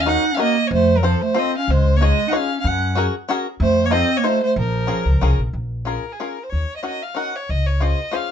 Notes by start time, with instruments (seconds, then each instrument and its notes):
Already playing: upright bass D#2
0.01 violin F5
0.06 five-string banjo C#4 D#4 F#4 A#4, clarinet D#4, violin F#5
0.32 clarinet C#4, violin F5
0.37 five-string banjo C#4 D#4 F#4 A#4
0.41 clarinet A#3, violin D#5
0.66 clarinet A#3, violin C#5
0.71 upright bass F2, clarinet A3, violin C5
0.97 clarinet F#3, violin A#4
1.03 clarinet F3, five-string banjo C4 F4 A4 C5, violin A4
1.22 clarinet A3, violin C5
1.34 five-string banjo C4 F4 A4 C5
1.39 clarinet C4, violin D#5
1.58 clarinet C#4, violin F5
1.68 upright bass C#2, violin C5
1.72 clarinet G#3
1.97 clarinet A#3, five-string banjo D#4, violin C#5
2.02 clarinet G#3, five-string banjo F4 G#4 C#5, violin D#5
2.28 clarinet D#4, five-string banjo D#4, violin F#5
2.32 five-string banjo F4 G#4 C#5, violin F5
2.37 clarinet C#4
2.60 clarinet C#4, violin F5
2.64 upright bass F#2, clarinet C#4, violin F#5
2.95 five-string banjo C#4 F#4 G#4 A#4
3.29 five-string banjo C#4 F#4 G#4 A#4
3.60 upright bass F2, clarinet A3, violin C5
3.85 clarinet A#3, violin C#5
3.90 five-string banjo D#4 F4 A4 C5, violin D#5
3.95 clarinet C4
4.17 clarinet A#3, violin C#5
4.24 clarinet A3, five-string banjo D#4 F4 A4 C5, violin C5
4.43 clarinet A3, violin C5
4.56 upright bass A#1, clarinet F3, violin A#4
4.87 five-string banjo C#4 F4 G#4 A#4
5.05 upright bass C#2
5.21 upright bass C2, five-string banjo C#4 F4 G#4 A#4
5.39 upright bass A#1
5.53 upright bass A#1
5.85 five-string banjo C#4 F4 G#4 A#4, violin A#4
6.12 violin G#4
6.20 five-string banjo C#4 F4 G#4 A#4, violin A#4
6.43 violin C5
6.50 upright bass D#2, violin C#5
6.77 violin D#5
6.83 five-string banjo C#4 D#4 F#4 A#4, violin D#5
7.03 violin F5
7.15 five-string banjo C#4 D#4 F#4 A#4, violin F#5
7.36 violin C#5
7.49 upright bass C#2, violin D#5
7.67 violin C#5
7.80 five-string banjo C#4 F4 G#4 C5, violin D#5
8.11 five-string banjo C#4 F4 G#4 C5, violin F5